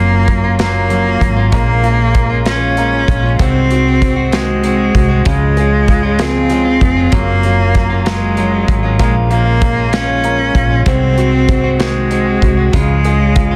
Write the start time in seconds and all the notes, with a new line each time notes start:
Already playing: F#1 F#3 A#3
0.00 C#4 F4
0.12 A#3 C#4 F4
0.28 F#3, kick, closed hi-hat
0.44 A#3 C#4 F4
0.59 F#3 A#3 C#4 F4, snare, closed hi-hat
0.90 F#3 A#3 C#4, closed hi-hat
0.94 F4
1.06 A#3 C#4 F4
1.21 G#1 F#3, kick, closed hi-hat
1.37 A#3 C#4 F4
1.52 A#1 A#2 F3 G#3 A#3 C#4 F4, kick, closed hi-hat
1.83 F3 G#3 C#4 F4, closed hi-hat
1.99 G#3 C#4 F4
2.15 A#3, kick, closed hi-hat
2.30 G#3 C#4 F4
2.46 A#2 F3 G#3 C#4 F4, snare, closed hi-hat
2.76 F3 G#3 A#3 C#4 F4, closed hi-hat
2.93 G#3 C#4 F4
3.08 A#1 F4, kick, closed hi-hat
3.23 G#3 C#4 F4
3.39 C2 C3 D#3 G#3 C4 F#4, kick, closed hi-hat
3.70 D#3 G#3 C4 F#4, closed hi-hat
3.85 G#3 C4 F#4
4.02 C4, kick, closed hi-hat
4.16 G#3 C4 F#4
4.32 C3 D#3 G#3 C4 F#4, snare, closed hi-hat
4.63 D#3 G#3 C4 F#4, closed hi-hat
4.78 G#3 C4 F#4
4.95 C2 F#4, kick, closed hi-hat
5.09 G#3 C4 F#4
5.25 C#2 C#3 F3 G#3 C#4 F4, kick, closed hi-hat
5.57 F3 G#3 C#4 F4 G#4, closed hi-hat
5.72 G#3 C#4 F4
5.88 F4, kick, closed hi-hat
6.03 G#3 C#4 F4
6.19 C#3 F3 G#3 C4 F4 G#4, snare, closed hi-hat
6.50 F3 G#3 C#4, closed hi-hat
6.54 F4
6.65 G#3 F4
6.81 F1 G#4, kick, closed hi-hat
6.97 G#3 C#4 F4
7.12 F#1 F#3 A#3 C#4 F4, kick, closed hi-hat
7.43 F#3 A#3 C#4 F4, closed hi-hat
7.59 A#3 C#4 F4
7.75 F#3, kick, snare, closed hi-hat
7.90 A#3 C#4 F4
8.05 F#3 G#3 A#3 C#4 F4, snare, closed hi-hat
8.36 F#3 A#3 C#4 F4, closed hi-hat
8.52 A#3 C#4 F4
8.68 G#1 F#3, kick, closed hi-hat
8.83 A#3 C#4 F4
8.99 A#1 A#2 F3 G#3 A#3 C#4 F4, kick, closed hi-hat
9.30 F3 G#3 A#3 C#4 F4, closed hi-hat
9.45 G#3 C#4 F4
9.62 A#3, kick, closed hi-hat
9.76 G#3 C#4 F4
9.92 A#2 F3 G#3 C#4 F4, snare, closed hi-hat
10.23 F3 G#3 A#3 C#4 F4, closed hi-hat
10.38 G#3 C#4 F4
10.55 A#1 F4, kick, closed hi-hat
10.70 G#3 C#4 F4
10.86 C2 C3 D#3 G#3 C4 F#4, kick, closed hi-hat
11.16 D#3 G#3 C4 F#4, closed hi-hat
11.32 G#3 C4 F#4
11.49 C4, kick, closed hi-hat
11.64 G#3 C4 F#4
11.79 C3 D#3 G#3 C4 F#4, snare, closed hi-hat
12.10 D#3 G#3 C4 F#4, closed hi-hat
12.26 G#3 C4 F#4
12.42 C2 F#4, kick, closed hi-hat
12.57 G#3 C4 F#4
12.73 C#2 C#3 F3 G#3 C#4 F4, kick, closed hi-hat
13.03 F3 G#3 C#4 F4 G#4, closed hi-hat
13.20 G#3 C#4 F4
13.36 F4, kick, closed hi-hat
13.51 F4